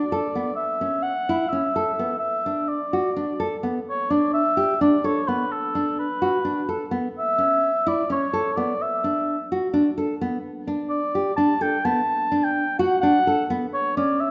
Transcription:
0.00 0.54 D5 medium
0.12 0.27 A4 medium
0.35 0.51 B3 medium
0.56 1.04 E5 medium
0.81 1.12 C#4 medium
1.03 1.50 F#5 loud
1.29 1.44 E4 medium
1.48 2.19 E5 medium
1.52 1.68 C#4 medium
1.76 1.91 A4 medium
1.99 2.15 B3 medium
2.19 2.70 E5 medium
2.46 2.77 D4 medium
2.68 3.63 D5 medium
2.93 3.09 F#4 medium
3.16 3.32 D4 medium
3.40 3.55 A4 medium
3.63 3.79 B3 medium
3.89 4.12 C#5 loud
4.10 4.41 D4 medium
4.10 4.33 D5 medium
4.34 4.78 E5 loud
4.57 4.73 G4 medium
4.81 4.97 D4 medium
4.81 5.07 D5 medium
5.04 5.20 A4 medium
5.04 5.29 C#5 medium
5.28 5.44 B3 medium
5.28 5.53 B4 medium
5.51 5.98 A4 medium
5.75 6.06 D4 medium
5.99 6.89 B4 medium
6.22 6.37 F#4 medium
6.45 6.60 D4 medium
6.69 6.84 A4 medium
6.91 7.07 B3 medium
7.18 7.89 E5 loud
7.38 7.70 C#4 medium
7.87 8.02 E4 medium
7.87 8.11 D5 medium
8.10 8.25 C#4 medium
8.10 8.58 C#5 medium
8.33 8.49 A4 medium
8.56 8.73 B3 medium
8.56 8.84 D5 medium
8.82 9.52 E5 medium
9.04 9.35 D4 medium
9.52 9.67 F#4 medium
9.74 9.89 D4 medium
9.98 10.13 A4 medium
10.21 10.37 B3 medium
10.67 10.99 D4 medium
10.90 11.34 D5 loud
11.15 11.31 G4 medium
11.36 11.53 D4 medium
11.36 11.64 A5 loud
11.61 11.77 A4 medium
11.61 11.86 G5 medium
11.85 12.01 B3 medium
11.85 12.45 A5 loud
12.32 12.63 D4 medium
12.44 12.78 G5 medium
12.79 12.95 F#4 medium
12.79 13.00 F#5 medium
13.01 13.18 D4 medium
13.01 13.51 F#5 loud
13.27 13.42 A4 medium
13.50 13.65 B3 medium
13.74 13.95 C#5 loud
13.97 14.28 C#4 medium
13.97 14.22 D5 medium
14.21 14.31 E5 loud

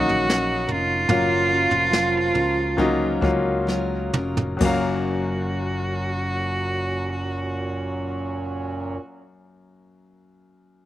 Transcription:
0.00 0.65 A#1 medium
0.00 0.28 D#3 medium
0.00 0.64 D#3 medium
0.00 0.28 F#3 medium
0.00 1.08 F#3 medium
0.00 1.09 A#3 medium
0.00 0.29 C#4 medium
0.00 1.10 C#4 medium
0.00 0.29 D#4 medium
0.00 0.64 D#4 loud
0.00 1.03 D#4 medium
0.00 0.73 F#4 loud
0.00 1.11 F#4 medium
0.00 0.31 A#4 loud
0.09 floor tom medium
0.28 0.68 F#3 medium
0.28 0.69 C#4 medium
0.28 0.68 D#4 medium
0.28 0.66 A#4 medium
0.28 snare loud
0.67 1.06 F1 loud
0.67 1.08 C#4 soft
0.67 1.09 D#4 medium
0.67 3.69 F4 loud
0.67 1.08 A#4 medium
0.67 floor tom medium
1.08 1.67 F#1 loud
1.08 4.09 F3 medium
1.08 2.69 F#3 medium
1.08 1.50 F#3 medium
1.08 2.69 A#3 medium
1.08 1.50 C#4 medium
1.08 2.69 C#4 medium
1.08 4.09 F4 loud
1.08 2.69 F4 medium
1.08 1.49 F4 medium
1.08 1.47 A#4 medium
1.08 floor tom loud
1.48 1.91 C#4 soft
1.48 1.92 F4 medium
1.48 1.91 A#4 medium
1.71 2.30 F1 medium
1.71 floor tom medium
1.91 2.34 F#3 medium
1.91 2.35 C#4 medium
1.91 2.34 F4 medium
1.91 2.33 A#4 medium
1.91 snare loud
2.34 3.18 C#2 medium
2.34 2.77 C#4 medium
2.34 2.78 F4 medium
2.34 2.77 A#4 medium
2.34 floor tom medium
2.77 3.19 F#3 medium
2.77 3.67 F#3 medium
2.77 3.20 A#3 medium
2.77 3.20 C#4 medium
2.77 3.68 C#4 medium
2.77 3.20 D#4 loud
2.77 3.69 F4 medium
2.77 3.69 A#4 loud
2.77 kick medium
3.21 4.10 C#2 loud
3.21 4.53 F#3 medium
3.21 4.54 A#3 medium
3.21 4.54 C#4 medium
3.21 4.54 F4 medium
3.21 kick loud
3.67 4.13 F#3 medium
3.67 4.14 C#4 medium
3.67 4.14 F4 medium
3.67 4.12 A#4 medium
3.67 snare medium
4.13 4.58 F1 medium
4.13 4.60 C#4 soft
4.13 4.62 F4 medium
4.13 4.61 A#4 medium
4.13 mid tom loud
4.37 floor tom loud
4.57 8.96 F#2 medium
4.57 8.92 F#3 medium
4.57 8.98 F#3 medium
4.57 8.96 A#3 medium
4.57 crash medium
4.61 8.97 F#1 loud
4.61 8.97 A#2 medium
4.61 8.97 F#3 medium
4.61 9.01 C#4 medium
4.61 8.97 C#4 loud
4.61 8.97 F#4 loud
4.61 9.00 F5 loud
4.61 kick loud
4.67 9.06 A#4 loud

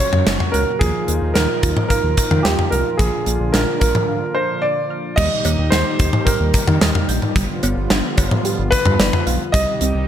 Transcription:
0.00 5.14 A#2 medium
0.00 0.79 C#3 medium
0.00 0.79 F#3 medium
0.00 0.79 C#4 medium
0.00 0.79 F#4 medium
0.00 0.54 C#5 loud
0.00 0.16 A#5 medium
0.13 0.25 F#2 medium
0.13 mid tom medium
0.26 0.38 F#1 loud
0.26 0.43 C#6 loud
0.26 snare loud
0.26 closed hi-hat medium
0.40 mid tom medium
0.52 0.66 C#2 medium
0.52 0.78 A#4 medium
0.52 0.70 F#6 medium
0.52 closed hi-hat medium
0.79 0.93 D#2 loud
0.79 2.97 D#3 medium
0.79 0.98 F3 medium
0.79 2.97 F3 medium
0.79 2.97 D#4 medium
0.79 5.14 F4 medium
0.79 1.31 G#4 medium
0.79 kick loud
0.79 closed hi-hat medium
1.08 1.20 D#2 loud
1.08 1.25 A#3 medium
1.08 closed hi-hat medium
1.22 1.34 D#2 medium
1.34 1.47 D#2 loud
1.34 1.52 D#4 medium
1.34 1.87 A#4 medium
1.34 snare loud
1.34 closed hi-hat medium
1.63 1.75 D#2 loud
1.63 1.80 F4 loud
1.63 kick loud
1.63 closed hi-hat medium
1.77 mid tom medium
1.89 2.40 A#4 medium
1.89 2.07 F5 medium
1.89 kick medium
1.89 closed hi-hat medium
2.04 2.16 D#2 loud
2.17 2.34 A#5 medium
2.17 kick loud
2.17 closed hi-hat medium
2.31 2.43 D#3 loud
2.31 mid tom medium
2.43 2.57 D#2 medium
2.43 2.69 G4 medium
2.43 2.61 D#6 loud
2.43 snare loud
2.43 closed hi-hat medium
2.59 mid tom medium
2.70 2.84 C2 medium
2.70 2.97 A#4 medium
2.70 2.89 F6 medium
2.70 closed hi-hat medium
2.97 3.11 A#1 loud
2.97 5.15 D3 medium
2.97 3.16 F3 medium
2.97 5.16 F3 medium
2.97 5.16 D4 medium
2.97 3.55 G#4 medium
2.97 kick loud
2.97 closed hi-hat medium
3.26 3.38 A#1 loud
3.26 3.43 A#3 medium
3.26 closed hi-hat medium
3.40 3.52 A#1 loud
3.52 3.66 A#1 loud
3.52 3.70 D4 medium
3.52 3.78 A#4 medium
3.52 snare loud
3.52 closed hi-hat medium
3.80 3.93 A#1 loud
3.80 3.98 F4 medium
3.80 4.58 A#4 medium
3.80 kick loud
3.80 closed hi-hat medium
3.95 mid tom medium
4.08 4.25 F5 medium
4.35 4.63 C5 medium
4.35 4.52 A#5 medium
4.62 5.19 D5 loud
4.62 4.80 D6 loud
4.90 5.07 F6 medium
5.16 5.29 D#2 loud
5.16 7.34 A#2 medium
5.16 7.34 D#3 medium
5.16 5.34 G3 medium
5.16 9.50 G3 medium
5.16 7.34 D#4 medium
5.16 7.34 G4 medium
5.16 5.73 D#5 loud
5.16 kick loud
5.16 crash loud
5.45 5.57 D#2 loud
5.45 5.61 A#3 medium
5.45 closed hi-hat medium
5.45 cowbell medium
5.59 5.70 D#2 loud
5.70 5.84 D#2 loud
5.70 5.89 D#4 medium
5.70 6.27 C5 medium
5.70 snare loud
5.70 closed hi-hat medium
5.99 6.11 D#2 medium
5.99 kick loud
5.99 closed hi-hat medium
6.13 mid tom medium
6.25 7.04 A#4 medium
6.25 6.43 G5 medium
6.25 kick medium
6.25 closed hi-hat medium
6.40 6.52 D#2 loud
6.54 6.71 A#5 medium
6.54 kick loud
6.54 closed hi-hat medium
6.68 6.79 D#3 loud
6.68 mid tom loud
6.81 6.93 D#2 medium
6.81 6.98 D#6 loud
6.81 snare loud
6.81 closed hi-hat medium
6.95 mid tom medium
7.09 7.20 A#1 medium
7.09 7.25 G6 medium
7.09 closed hi-hat medium
7.22 mid tom medium
7.36 7.47 G1 loud
7.36 9.52 D3 medium
7.36 9.52 F3 medium
7.36 7.52 G3 medium
7.36 9.52 B3 medium
7.36 9.52 F4 medium
7.36 kick loud
7.36 closed hi-hat medium
7.63 7.75 G1 loud
7.63 7.80 B3 medium
7.63 closed hi-hat medium
7.63 cowbell medium
7.77 7.88 G1 loud
7.90 8.02 G1 loud
7.90 8.07 D4 medium
7.90 snare loud
7.90 closed hi-hat medium
8.18 8.29 G1 loud
8.18 kick loud
8.18 closed hi-hat medium
8.18 cowbell medium
8.31 mid tom medium
8.45 8.62 G4 medium
8.45 closed hi-hat medium
8.59 8.70 G1 loud
8.71 9.22 B4 loud
8.71 8.89 B4 medium
8.71 kick loud
8.71 closed hi-hat medium
8.86 8.97 G2 loud
8.86 mid tom loud
8.99 9.11 G1 loud
8.99 9.16 D5 loud
8.99 snare loud
8.99 closed hi-hat medium
9.13 mid tom medium
9.27 9.38 B1 medium
9.27 9.43 F5 medium
9.27 closed hi-hat medium
9.52 9.66 C2 loud
9.52 10.08 C3 medium
9.52 10.08 D#3 medium
9.52 9.70 G3 medium
9.52 10.08 G3 medium
9.52 10.08 D#4 medium
9.52 10.08 G4 medium
9.52 10.08 D#5 loud
9.52 kick loud
9.52 closed hi-hat medium
9.81 9.93 C2 loud
9.81 9.98 C4 medium
9.81 closed hi-hat medium
9.95 10.06 C2 medium

